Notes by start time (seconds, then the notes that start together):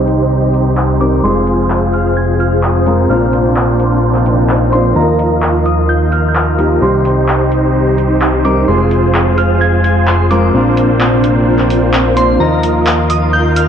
Already playing: C2 C3 D#3 G3 C4 D#4 G4 C5 C6
0.07 open hi-hat
0.54 open hi-hat
0.77 clap
1.00 G3 C4 D#4 A#4 D6, open hi-hat
1.22 F1 C3 F3 G#3 C4 F4 G#4 C5 C6
1.47 open hi-hat
1.70 clap
1.93 F6, open hi-hat
2.17 G#6
2.40 F6, open hi-hat
2.63 D#6, clap
2.86 G#3 C4 F4 A#4, open hi-hat
3.09 A#1 A#2 F3 A#3 C4 D4 F4 A#4 C5 F6
3.33 open hi-hat
3.56 clap
3.80 open hi-hat
4.03 swell
4.14 clap
4.26 open hi-hat
4.49 clap
4.72 C4 D4 F4 C5 C6, open hi-hat
4.95 D#2 D#3 F3 A#3 D#4 F4 A#4 D#5 A#5
5.19 open hi-hat
5.42 clap
5.66 D#6, open hi-hat
5.89 G6
6.12 F6, open hi-hat
6.29 G6
6.35 F6, clap
6.58 F3 A#3 D#4 G4, open hi-hat
6.81 C2 C3 G3 C4 D#4 G4 C5 C6
7.05 open hi-hat
7.28 clap
7.52 open hi-hat
7.98 open hi-hat
8.21 clap
8.44 G3 C4 D#4 A#4 D6, open hi-hat
8.67 F1 F3 G#3 C4 F4 G#4 C5 C6
8.91 open hi-hat
9.14 clap
9.38 F6, open hi-hat
9.61 G#6
9.84 G#6, open hi-hat
10.07 C6, clap
10.30 G#3 C4 F4 A#4 D6, open hi-hat
10.53 A#1 A#2 C3 A#3 C4 D4 F4 A#4 C5
10.77 open hi-hat
11.00 clap
11.24 open hi-hat
11.59 clap
11.70 open hi-hat
11.93 clap
12.16 C4 D4 F4 C5 C6, open hi-hat
12.39 D#2 D#3 F3 A#3 D#4 F4 A#4 D#5 A#5
12.63 open hi-hat
12.86 clap
13.10 D#6, open hi-hat
13.33 G6
13.56 F6, open hi-hat